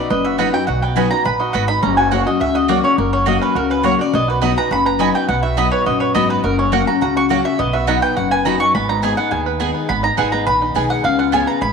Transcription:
Already playing: D#4 F#4 D5
0.10 F#1 F#2 B4 D#5
0.25 F#4 E5
0.38 F#3 B3 D#4 F#4 B4 D#5 F#5 B5
0.53 D#4 F#4 G5
0.67 B1 B2 F#4 F#5
0.82 B3 G5
0.96 F#3 B3 D#4 F#4 B4 D#5 G#5 B5
1.10 D#4 F#4 A#5
1.25 A#1 A#2 B4 B5
1.40 F#4 D#5
1.53 G#1 G#2 B3 F#4 B4 D#5 F#5 B5
1.68 D#4 B5
1.82 F#1 F#2 C#4 A#5
1.97 F#4 G#5
2.11 F#3 A#3 C#4 F#4 C#5 F#5
2.26 C#4 F#4 D#5
2.40 C#2 C#3 F#4 E5
2.55 F#4 D#5
2.68 F#3 A#3 C#4 F#4 C#5 D5 F#5
2.83 C#4 F#4 C#5
2.98 F#1 F#2 F#4 A#4
3.13 C#4 C#5
3.26 F#3 A#3 C#4 F#4 C#5 D#5 F#5
3.42 C#4 B4
3.55 C#2 C#3 F#4 A#4
3.70 C#4 B4
3.83 F#3 A#3 C#4 F#4 C#5 F#5
3.99 C#4 F#4 D5
4.13 B1 B2 B3 D#5
4.28 F#4 B4
4.42 F#3 B3 D#4 F#4 D#5 B5
4.56 D#4 F#4 B4 A#5
4.71 F#1 F#2 F#4 B5
4.86 B4 A#5
4.99 F#3 B3 D#4 F#4 D#5 G#5 B5
5.14 B3 D#4 F#4 G5
5.29 B1 B2 B3 F#5
5.43 F#4 E5
5.57 F#3 B3 D#4 F#4 D#5 B5
5.71 B4 C#5
5.86 A#1 F#2 F#4 D#5
6.00 B4 C#5
6.15 G#1 F#3 B3 D#4 F#4 D#5 B5
6.30 B3 B4
6.44 F#1 F#2 F#4 A#4
6.59 C#4 C#5
6.72 F#3 A#3 C#4 F#4 C#5 F#5
6.87 C#4 F#4 A#5
7.01 C#2 C#3 F#4 A#5
7.17 F#4 C#6
7.29 F#3 A#3 C#4 F#4 C#5 F#5
7.44 C#4 F#4 E5
7.59 B1 B2 B3 D#5
7.73 F#4 E5
7.87 F#3 B3 D#4 F#4 D#5 F#5 B5
8.02 B4 G5
8.17 F#1 F#2 F#4 F#5
8.31 B4 G#5
8.45 F#3 B3 D#4 F#4 D#5 A#5 B5
8.60 B3 D#4 F#4 C#6
8.75 G#1 G#2 B3 B5
8.89 D#4 A#5
9.02 G#3 B3 D#4 G#4 D#5 G#5
9.17 B3 D#4 G#4 F#5
9.31 D#2 D#3 G#4 G#5
9.46 B4
9.60 G#3 B3 D#4 G#4 D#5 G#5
9.74 B3
9.89 G#1 G#2 B3 B5
10.03 D#4 A#5
10.17 G#1 G#3 B3 D#4 G#4 B4 D#5 F#5 G#5
10.32 B3 D#4 G#4 A#5
10.47 A#1 D#3 B4 B5
10.62 D#4
10.75 B1 G#3 B3 D#4 G#4 B4 D#5 G#5
10.90 G#4 F#5
11.04 C#2 C#3 B3 F5
11.19 F4 F#5
11.32 F3 G#3 B3 F4 G#4 C#5 G#5
11.47 B3 G#4 A#5
11.61 G#1 G#2 G#4 B5

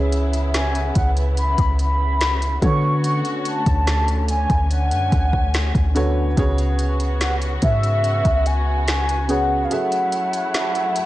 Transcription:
Already playing: C#2 C#3 B3 C#4 E4 G#4 B4 E5
0.12 closed hi-hat
0.33 closed hi-hat
0.54 G#5, snare, closed hi-hat
0.75 closed hi-hat
0.95 C#2 F#5, kick, closed hi-hat
1.17 closed hi-hat
1.37 B5, closed hi-hat
1.58 C#2, kick, closed hi-hat
1.79 B5, closed hi-hat
2.21 snare, closed hi-hat
2.42 closed hi-hat
2.62 D3 A3 B3 C#4 F#4 A4 C#5 C#6, kick, closed hi-hat
3.04 C#6, closed hi-hat
3.25 closed hi-hat
3.45 A5, closed hi-hat
3.66 D2, kick, closed hi-hat
3.87 snare, closed hi-hat
4.08 closed hi-hat
4.28 G#5, closed hi-hat
4.50 D2, kick, closed hi-hat
4.71 F#5, closed hi-hat
4.91 F#2, closed hi-hat
5.12 D2, kick, closed hi-hat
5.33 kick
5.54 snare, closed hi-hat
5.75 D2, kick, closed hi-hat
5.95 D3 B3 F#4 A4 C#5, closed hi-hat
6.37 C#2 C#3 B3 F#4 G#4 C#5, kick, closed hi-hat
6.58 closed hi-hat
6.79 closed hi-hat
7.00 closed hi-hat
7.21 F#5, snare, closed hi-hat
7.42 closed hi-hat
7.62 G#2 E5, kick, closed hi-hat
7.83 closed hi-hat
8.04 closed hi-hat
8.25 C#2, kick, closed hi-hat
8.46 G#5, closed hi-hat
8.88 G#5, snare, closed hi-hat
9.09 closed hi-hat
9.28 C#3 B3 F#4 G#4 C#5 F#5, closed hi-hat
9.65 F5
9.70 F#3 A3 C#4 E4 G#4 A4 E5 F#5, closed hi-hat
9.92 closed hi-hat
10.12 closed hi-hat
10.33 closed hi-hat
10.54 snare, closed hi-hat
10.75 closed hi-hat
10.96 closed hi-hat

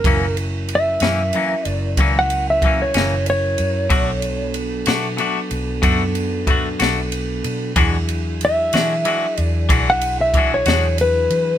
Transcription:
Already playing: A#4
0.04 F#1 F#2 E3 F#3 A#3 C#4 E4 A#4, kick, ride
0.37 ride
0.69 ride
0.75 E5
1.00 F#2 A#3 C#4, snare, ride
1.05 E3
1.33 F#2 E3 A#3, ride
1.37 C#4
1.65 F#1 D5, ride
1.97 C#2 F#2 E3 A#3 C#4, kick, ride
2.19 F#5
2.30 ride
2.50 E5
2.62 F#2 E3 A#3, kick, ride
2.67 C#4
2.82 C#5
2.94 F#1 E3 A#3 C#4, snare, ride
3.26 C#5, ride
3.58 F#2, ride
3.90 B1 B2 F#3 A3 B3 D4 F#4 A4, kick, ride
4.22 ride
4.54 ride
4.86 B2 D4 F#4, snare, ride
4.91 A3
5.17 B2 A3 D4 F#4, ride
5.51 B1, ride
5.82 F#2 B2 A3 D4 F#4, kick, ride
6.15 ride
6.47 B2 A3 D4 F#4, kick, ride
6.80 B1 A3 D4 F#4, snare, ride
7.12 ride
7.44 B2, ride
7.76 E2 E3 F#3 G#3 D4 E4 F#4 G#4, kick, ride
8.09 ride
8.41 E5, ride
8.73 E3 D4 F#4, snare, ride
8.77 G#3
9.05 E3 G#3 D4 F#4, ride
9.37 E2 D5, ride
9.69 B1 E3 G#3 D4 F#4, kick, ride
9.90 F#5
10.01 ride
10.21 E5
10.34 E3 G#3 D4, kick, ride
10.39 F#4
10.54 C#5
10.66 E2 G#3 D4 F#4, snare, ride
10.98 B4, ride
11.30 E3, ride

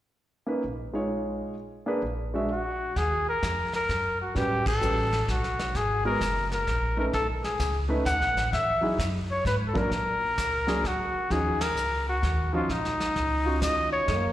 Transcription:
0.46 A#3 C#4 D#4 B4
0.64 A#1
0.93 G#3 D#4 F4 C#5
1.86 A#3 D4 G#4 B4
2.02 A#1
2.34 G#3 D4 F#4 E5
2.51 F#4
2.96 D#2 G#4, brush sweep, kick, snare
3.29 A#4
3.42 F2, kick, snare, hi-hat pedal
3.73 A#4, snare
3.89 F#2, kick, snare
4.21 F#4
4.35 A2 G3 C#4 F#4 G4 B4, brush sweep, kick, snare
4.66 A4, kick, ride
4.80 A1 G3 C#4 F#4 B4, hi-hat pedal
5.13 snare
5.28 B1 F#4, kick, snare
5.44 snare
5.59 snare
5.75 G#1 G#4, brush sweep, kick, snare
6.05 G#3 B3 F#4 A#4
6.21 F#1, kick, snare, hi-hat pedal
6.52 A#4, snare
6.67 A#1, kick, snare
6.97 A3 C#4 D#4 A#4 B4
7.13 B1 A4, brush sweep, kick, snare
7.44 G#4, snare
7.59 C#2, kick, snare, hi-hat pedal
7.89 A3 C#4 D#4 B4
8.06 D#2 F#5, kick, snare, hi-hat pedal
8.20 B1, snare
8.35 A1, snare
8.52 E2 E5, brush sweep, kick, snare
8.81 F#3 D#4 E4 G#4
8.98 F#2, kick, snare, hi-hat pedal
9.31 C#5
9.45 G#2 B4, kick, snare
9.67 A4
9.74 F#3 A#3 D4 A#4, kick
9.78 A#4
9.91 A#2, brush sweep, kick, snare
10.37 C#2, kick, snare, hi-hat pedal
10.67 F#3 A#3 D4 G#4, snare
10.84 D2 F#4, kick, snare
11.14 muted upright bass stroke
11.30 D#2 F3 C#4 D#4 F#4 G#4, brush sweep, kick, snare
11.61 A#4, snare, ride
11.75 C#2, hi-hat pedal
12.09 F#4
12.23 D#2, kick, snare
12.53 F3 C#4 D#4 F4 F#4
12.69 A#1 D#4, brush sweep, kick, snare
12.85 snare
13.00 snare
13.15 C#2, kick, snare
13.45 C#4 D#4 F4 F#4
13.62 D#2 D#5, kick, snare, hi-hat pedal
13.92 C#5
14.08 F#2 A#3, brush sweep, kick, snare

